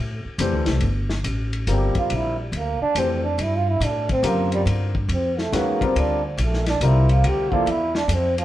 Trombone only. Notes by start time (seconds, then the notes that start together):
1.72 G4
1.98 F4
2.15 E4
2.40 G3
2.57 A#3
2.82 D4
2.99 C4
3.23 D4
3.42 E4
3.56 F4
3.71 E4
3.84 D4
4.11 C4
4.27 A#3
4.54 G3
5.13 C4
5.39 A3
5.57 A#3
5.84 C4
5.98 D4
6.26 F3
6.43 A3
6.68 D4
6.86 E4
7.11 F4
7.27 G4
7.53 F4
7.71 E4
7.96 D4
8.14 C4
8.38 F3